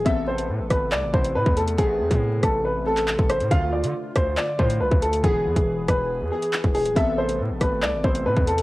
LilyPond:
<<
  \new Staff \with { instrumentName = "Grand piano" } { \time 4/4 \key a \minor \tempo 4 = 139 e''8 c''8 r8 b'8 d''8 c''8 b'8 a'8 | gis'4. a'8 b'8 a'4 c''8 | f''8 d''8 r8 c''8 d''8 c''8 b'8 a'8 | gis'4. b'4 gis'4 gis'8 |
e''8 c''8 r8 b'8 d''8 c''8 b'8 a'8 | }
  \new Staff \with { instrumentName = "Synth keys" } { \time 4/4 \key a \minor <b c' a'>4. r4 <b c' e'>4 r8 | <a b c'>4. r4 <b c' a'>4 r8 | <d a f'>4. r4 <d a f'>4 r8 | <e b gis'>4. r4 <e b gis'>4 r8 |
<b c' a'>4. r4 <b c' e'>4 r8 | }
  \new Staff \with { instrumentName = "Analog synth pad" } { \time 4/4 \key a \minor << { b'1~ | b'1 | a1 | b'1~ |
b'1 | } \\ { <c a>1~ | <c a>1 | <d f'>1 | <e gis'>1 |
<c a>1 | } >> }
  \new Staff \with { instrumentName = "808-style bass" } { \clef bass \time 4/4 \key a \minor a,,4 a,16 a,,16 gis,,8 c,16 gis,,16 a,,8 a,16 e,8. | a,,8 e,16 a,8. a,,4.~ a,,16 a,,8 a,16 | d,8. d16 r8 d,8 r8 a,8 c,16 d,8. | e,,8 e,16 e,,8. e,,8. e,16 r8. e,,8 d,,16 |
a,,4 a,16 a,,16 gis,,8 c,16 gis,,16 a,,8 a,16 e,8. | }
  \new DrumStaff \with { instrumentName = "Drums" } \drummode { \time 4/4 <hh bd>8. hh16 r8 <hh bd ss>8 hc8 bd16 hh16 r16 bd16 hh16 hh16 | <hh bd>8. <hh bd>16 r8 <hh bd ss>8 r8. <hc hh>16 <hc hh>16 bd16 <hh ss>16 hh16 | <hh bd>8. hh16 r8 <hh bd ss>8 hc8 bd16 hh16 r16 bd16 hh16 hh16 | <hh bd>8. <hh bd>16 r8 <hh bd ss>8 r8. hh16 <hc hh>16 bd16 hho16 hh16 |
<hh bd>8. hh16 r8 <hh bd ss>8 hc8 bd16 hh16 r16 bd16 hh16 hh16 | }
>>